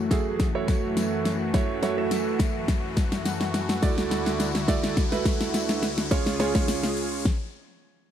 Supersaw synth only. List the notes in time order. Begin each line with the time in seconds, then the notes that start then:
Already playing: F#2 E3 A3 F#4
3.83 D3 E4
6.11 C#3 F4 G#4